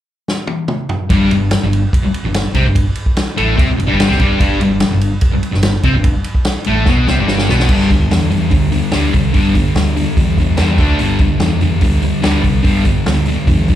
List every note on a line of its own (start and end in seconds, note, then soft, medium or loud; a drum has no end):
0.28 snare medium
0.47 high tom medium
0.68 mid tom medium
0.89 floor tom medium
1.10 1.30 G1 medium
1.10 1.30 G2 medium
1.10 1.31 G3 loud
1.10 kick loud
1.10 ride loud
1.31 1.51 G1 medium
1.31 1.48 G2 medium
1.31 ride medium
1.51 snare loud
1.51 ride medium
1.63 1.82 G1 medium
1.63 1.79 G2 medium
1.73 ride medium
1.93 kick loud
1.93 ride medium
2.04 muted distorted electric guitar stroke medium
2.04 muted fingered electric bass stroke soft
2.14 ride medium
2.25 2.44 G1 medium
2.25 2.41 G2 medium
2.34 snare loud
2.34 ride loud
2.54 2.64 C2 medium
2.54 2.65 C3 medium
2.54 2.65 C4 medium
2.54 kick medium
2.54 ride medium
2.64 2.85 G1 medium
2.64 2.81 G2 medium
2.75 kick loud
2.75 ride loud
2.95 ride medium
3.06 kick medium
3.17 snare loud
3.17 ride medium
3.37 3.58 A1 medium
3.37 3.56 A2 medium
3.37 3.57 A3 loud
3.37 ride medium
3.56 3.68 C2 medium
3.56 3.67 C3 medium
3.56 3.67 C4 loud
3.56 kick loud
3.56 ride medium
3.67 muted distorted electric guitar stroke medium
3.71 muted fingered electric bass stroke soft
3.77 3.90 G1 medium
3.77 3.86 G2 medium
3.77 ride medium
3.87 4.08 G2 medium
3.87 4.08 G3 loud
3.92 4.10 G1 loud
4.00 snare loud
4.00 ride medium
4.07 4.19 C2 loud
4.07 4.18 C3 medium
4.07 4.19 C4 loud
4.07 snare soft
4.19 4.39 G1 medium
4.19 4.39 G2 medium
4.19 4.40 G3 medium
4.19 kick medium
4.19 ride medium
4.40 4.60 G1 medium
4.40 4.60 G2 medium
4.40 4.61 G3 loud
4.40 kick loud
4.40 ride medium
4.61 4.81 G1 medium
4.61 4.77 G2 medium
4.61 ride medium
4.80 snare loud
4.80 ride medium
4.91 5.12 G1 medium
4.91 5.08 G2 medium
5.01 ride medium
5.21 kick loud
5.21 ride loud
5.32 muted distorted electric guitar stroke medium
5.32 muted fingered electric bass stroke soft
5.43 ride medium
5.52 5.74 G1 medium
5.52 5.69 G2 medium
5.52 snare soft
5.63 snare loud
5.63 ride loud
5.83 5.94 C2 loud
5.83 5.94 C3 medium
5.83 5.94 C4 medium
5.83 kick medium
5.83 ride medium
5.93 6.10 G2 medium
5.98 6.16 G1 medium
6.04 kick loud
6.04 ride loud
6.24 ride medium
6.35 kick medium
6.45 snare loud
6.45 ride medium
6.64 6.87 A1 medium
6.64 6.87 A2 medium
6.64 6.87 A3 loud
6.64 ride medium
6.85 7.07 B1 medium
6.85 7.07 B2 medium
6.85 7.08 B3 loud
6.85 kick loud
6.85 snare medium
7.07 7.18 C2 medium
7.07 7.18 C3 medium
7.07 7.18 C4 loud
7.07 snare medium
7.18 7.47 G1 loud
7.18 7.49 G2 medium
7.18 7.49 G3 loud
7.28 snare medium
7.38 snare medium
7.49 7.69 B1 medium
7.49 7.70 B2 medium
7.49 7.70 B3 loud
7.49 snare medium
7.60 snare medium
7.69 7.83 G1 medium
7.69 7.89 G2 medium
7.69 7.90 D3 medium
7.69 7.91 G3 loud
7.69 kick loud
7.69 crash loud
7.80 snare soft
7.90 8.05 D2 medium
7.90 8.09 G2 medium
7.90 8.09 D3 medium
7.90 kick medium
7.90 open hi-hat medium
8.11 8.25 E2 medium
8.11 8.29 G2 medium
8.11 8.30 D3 medium
8.11 snare loud
8.11 open hi-hat medium
8.30 8.46 E2 medium
8.30 8.50 G2 medium
8.30 8.50 D3 medium
8.30 open hi-hat medium
8.51 8.80 D2 medium
8.51 8.70 G2 medium
8.51 8.71 D3 medium
8.51 kick loud
8.51 open hi-hat medium
8.71 8.91 G2 medium
8.71 8.91 D3 medium
8.71 open hi-hat medium
8.91 9.08 D2 medium
8.91 9.12 G2 medium
8.91 9.13 D3 medium
8.91 9.13 G3 loud
8.91 snare loud
8.91 open hi-hat medium
9.14 9.28 C2 medium
9.14 9.32 G2 medium
9.14 9.33 D3 medium
9.14 kick medium
9.14 open hi-hat medium
9.33 9.62 G1 medium
9.33 9.54 G2 medium
9.33 9.54 D3 medium
9.33 9.54 G3 loud
9.33 kick loud
9.33 open hi-hat medium
9.55 9.74 G2 medium
9.55 9.74 D3 medium
9.55 kick medium
9.55 open hi-hat medium
9.74 10.02 D2 medium
9.74 9.95 G2 medium
9.74 9.95 D3 medium
9.74 snare loud
9.74 open hi-hat medium
9.96 10.15 G2 medium
9.96 10.16 D3 medium
9.96 open hi-hat medium
10.17 10.45 E2 medium
10.17 10.37 G2 medium
10.17 10.37 D3 medium
10.17 kick loud
10.17 open hi-hat medium
10.38 10.56 G2 medium
10.38 10.57 D3 medium
10.38 kick medium
10.38 open hi-hat medium
10.57 10.72 E2 medium
10.57 10.78 G2 medium
10.57 10.78 D3 medium
10.57 10.79 G3 loud
10.57 snare loud
10.57 open hi-hat medium
10.78 10.92 D2 medium
10.78 10.99 D3 medium
10.78 10.99 A3 medium
10.78 10.99 D4 loud
10.78 kick loud
10.78 open hi-hat medium
10.99 11.15 G1 medium
10.99 11.19 G2 medium
10.99 11.20 D3 loud
10.99 11.20 G3 medium
10.99 open hi-hat medium
11.19 11.34 D2 medium
11.19 11.40 G2 medium
11.19 11.40 D3 medium
11.19 kick medium
11.19 open hi-hat medium
11.40 11.55 E2 medium
11.40 11.60 G2 medium
11.40 11.61 D3 medium
11.40 snare loud
11.40 open hi-hat medium
11.61 11.76 E2 medium
11.61 11.81 G2 medium
11.61 11.81 D3 medium
11.61 open hi-hat medium
11.81 12.09 D2 medium
11.81 12.01 G2 medium
11.81 12.02 D3 medium
11.81 kick loud
11.81 open hi-hat medium
12.02 12.21 G2 medium
12.02 12.22 D3 medium
12.02 open hi-hat medium
12.22 12.38 D2 medium
12.22 12.42 G2 medium
12.22 12.42 D3 medium
12.22 12.43 G3 loud
12.22 snare loud
12.22 open hi-hat medium
12.43 12.58 C2 medium
12.43 12.62 G2 medium
12.43 12.63 D3 medium
12.43 kick medium
12.43 open hi-hat medium
12.63 12.92 G1 medium
12.63 12.84 G2 medium
12.63 12.84 D3 medium
12.63 12.85 G3 medium
12.63 kick loud
12.63 open hi-hat medium
12.85 13.04 G2 medium
12.85 13.04 D3 medium
12.85 kick medium
12.85 open hi-hat medium
13.06 13.34 D2 medium
13.06 13.25 G2 medium
13.06 13.25 D3 medium
13.06 snare loud
13.06 open hi-hat medium
13.26 13.46 G2 medium
13.26 13.46 D3 medium
13.26 open hi-hat medium
13.47 13.75 E2 medium
13.47 13.67 G2 medium
13.47 13.67 D3 medium
13.47 kick loud
13.47 open hi-hat medium
13.68 13.75 G2 medium
13.68 13.75 D3 medium
13.68 kick medium
13.68 open hi-hat medium